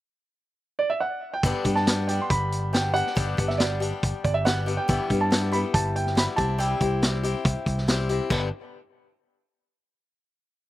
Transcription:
0.79 D5
0.90 E5
1.00 F#5
1.34 G5
1.43 G1 G2 D3 G3 B3 D4 G4, kick, closed hi-hat
1.64 G2 G3 B3 D4 G4, kick, closed hi-hat
1.76 A5, snare
1.86 G3 B3 D4 G4, snare, closed hi-hat
2.07 B3 D4 G4 G5, closed hi-hat
2.12 G3
2.22 C6
2.30 G1 B5, kick, closed hi-hat
2.52 closed hi-hat
2.73 G3 B3 D4 G4 G5, snare, closed hi-hat
2.94 G3 B3 D4 G4 F#5, closed hi-hat
3.07 snare
3.15 G1 G2 D3 G3 B3 D4 G4, kick, closed hi-hat
3.37 G1 G3 B3 D4 G4, kick, closed hi-hat
3.48 E5, snare
3.58 G3 B3 D5, snare, closed hi-hat
3.62 D4 G4
3.80 G3 B3 D4 G4, closed hi-hat
4.03 G1, kick, closed hi-hat
4.24 G1 D5, kick, closed hi-hat
4.34 E5
4.45 G3 B3 D4 G4 F#5, snare, closed hi-hat
4.66 G3 B3 D4 G4, closed hi-hat
4.77 G5
4.88 G1 G2 E3 G3 B3 E4 G4, kick, closed hi-hat
5.10 G2 G3 B3 E4 G4, kick, closed hi-hat
5.21 A5
5.31 G3 B3 E4 G4, snare, closed hi-hat
5.52 G3 B3 E4 G4 B5, closed hi-hat
5.74 G1 A5, kick, closed hi-hat
5.96 G5, closed hi-hat
6.07 snare
6.15 G3 B3 E4 G4 B5, snare, closed hi-hat
6.36 C2 C4 E4 G4 A5, kick, closed hi-hat
6.58 C3 G3 C4 E4 G4 G5, closed hi-hat
6.80 C2 C4 E4 G4, kick, closed hi-hat
7.02 G3 C4 E4 G4, snare, closed hi-hat
7.23 C4 E4 G4, closed hi-hat
7.45 C2, kick, closed hi-hat
7.66 C2, kick, closed hi-hat
7.78 snare
7.87 G3 C4 E4 G4, snare, closed hi-hat
8.09 C4 E4 G4, closed hi-hat
8.30 G1 G2 D3 G3 B3 D4 G4, kick, crash

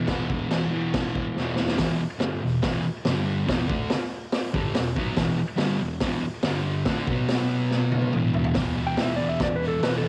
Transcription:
Already playing: E3
0.07 E2 B2, kick, snare, crash
0.12 E3
0.28 E3, kick
0.33 B2
0.49 E2 B2 E3, snare, crash
0.71 E3
0.76 B2
0.94 kick, snare, crash
1.15 kick
1.36 E2 B2, snare
1.40 E3
1.56 E3, snare
1.60 B2
1.68 snare
1.78 E2 B2 E3, kick, snare, open hi-hat
2.00 muted distorted electric guitar stroke
2.19 G2 D3 G3, snare, open hi-hat
2.42 E2 B2
2.62 E2 B2 E3, kick, snare, open hi-hat
2.83 muted distorted electric guitar stroke
3.05 G2 D3 G3, snare, open hi-hat
3.47 E2 B2 E3, kick, snare, open hi-hat
3.68 D3 A3 D4, kick
3.90 snare, open hi-hat
4.32 snare, open hi-hat
4.54 G2 D3 G3, kick
4.75 E2 B2, snare, open hi-hat
4.96 B2 F#3 B3, kick
5.16 E2 B2 E3, kick, snare, open hi-hat
5.37 muted distorted electric guitar stroke
5.56 G2 D3 G3, snare, open hi-hat
5.79 E2 B2
6.00 E2 B2 E3, kick, snare, open hi-hat
6.23 muted distorted electric guitar stroke
6.43 G2 D3 G3, snare, open hi-hat
6.85 D3 A3 D4, kick, snare, open hi-hat
7.07 B2 F#3 B3, kick
7.29 snare, open hi-hat
7.71 snare
7.92 high tom
8.02 high tom
8.13 E2 B2 E3, mid tom
8.34 floor tom
8.44 floor tom
8.55 E2, kick, snare, open hi-hat
8.59 B2 E3
8.77 E3
8.82 B2
8.87 G5
8.97 E2 B2 E3, snare, open hi-hat
9.02 E5
9.16 E3 D5
9.23 B2
9.29 E5
9.40 D5, kick, snare, open hi-hat
9.56 B4
9.68 A4
9.81 E2 B2 B4, snare, open hi-hat
9.85 E3
9.98 A4
10.04 E3

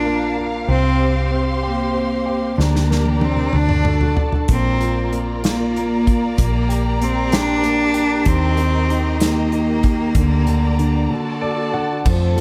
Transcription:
Already playing: A#1 A#3 D4 F4 A#4 F5 A#5
0.05 A#3
0.38 F4
0.68 C2 C4 G4 C5 C6
1.00 G4
1.31 C4
1.63 A#3 G4
1.95 C4
2.26 G4
2.58 D2 A#3 D4 G4 A#4 D5 A#5, snare
2.75 snare
2.90 A#4, snare
3.06 high tom
3.21 C4 D4, high tom
3.37 mid tom
3.53 D2 D4 F#4 A4 A5, mid tom
3.69 mid tom
3.85 A4, mid tom
4.01 floor tom
4.17 D4, floor tom
4.32 floor tom
4.48 A#1 A#3 C4 F4 A#4 D5 A#5, kick, closed hi-hat
4.81 F4, closed hi-hat
5.12 A#3, closed hi-hat
5.44 A#3 F4, snare, closed hi-hat
5.75 A#3, closed hi-hat
6.07 F4, kick, closed hi-hat
6.38 A#1 A#3 G4, kick, closed hi-hat
6.69 G4, closed hi-hat
7.01 A#3 C4, closed hi-hat
7.32 D4 G4, snare, closed hi-hat
7.63 A#3, closed hi-hat
7.94 G4, closed hi-hat
8.25 D#2 D#3 C4 D#5, kick, closed hi-hat
8.57 D#3, closed hi-hat
8.89 D#3, closed hi-hat
9.20 D#3 A#3, snare, closed hi-hat
9.52 D#3, closed hi-hat
9.83 D#3, kick, closed hi-hat
10.15 D2 D3 D5 A#5, kick, closed hi-hat
10.47 D3, closed hi-hat
10.79 D3, closed hi-hat
11.10 D3 F#4 A4 D5 A5
11.41 A4 D5
11.74 D3 F#5
12.05 F2 F3 A3 C4 F4 A4 C5 A5, kick, crash
12.36 F3 A4

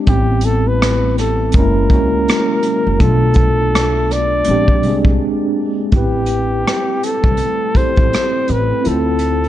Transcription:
0.06 A1 C3 G3 A3 B3 C4 G4, kick, closed hi-hat
0.11 E4
0.41 A4, closed hi-hat
0.67 B4
0.82 cross-stick, closed hi-hat
1.18 A4, cross-stick, closed hi-hat
1.52 F#1 F#3 G#3 E4 A#4, kick, closed hi-hat
1.56 A#3 C#4 E4
1.89 C#2 G#3 A#3 C#4, kick, closed hi-hat
1.95 F#4
2.28 cross-stick, closed hi-hat
2.63 closed hi-hat
2.87 F#1
2.98 B1 A3 B3 D4 A4, kick, closed hi-hat
3.04 F4
3.34 kick, closed hi-hat
3.75 cross-stick, closed hi-hat
4.11 D5, cross-stick, closed hi-hat
4.45 A#1 G#3 A#3 C4, closed hi-hat
4.49 D4 G4
4.68 kick
4.83 C2 G#3 C4, closed hi-hat
4.88 D4 G#4
5.05 kick
5.92 A1 G3 A3 B3 C4 E4 G4, kick, closed hi-hat
5.96 C4 G4 B4
6.26 closed hi-hat
6.68 cross-stick, closed hi-hat
7.03 A4, closed hi-hat
7.24 C2, kick
7.37 closed hi-hat
7.74 C4 E4 G4 C5, kick, closed hi-hat
7.79 A4
7.96 A1, kick, closed hi-hat
8.13 cross-stick, closed hi-hat
8.48 A1, closed hi-hat
8.52 B4
8.82 D3 F3 C4 E4 F4, closed hi-hat
8.86 D2 A4
9.19 closed hi-hat
9.44 closed hi-hat

